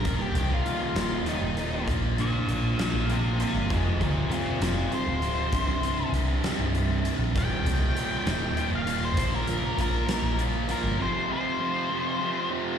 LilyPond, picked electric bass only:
\new Staff \with { instrumentName = "Picked electric bass" } { \clef bass \time 6/8 \key ees \major \tempo 4. = 66 ees,,8 c,8 r8 ees,,8 r16 ees,,8. | bes,,4 bes,,8 r16 bes,,4 g,,16 | f,,8 d,8 r8 f,,8 r16 d,,8. | c,,4 c,8 r16 c,,4 bes,,16 |
ees,,8 c,8 r8 ees,,8 r16 ees,,8. | bes,,4 bes,,8 r16 bes,,4 g,,16 | r2. | }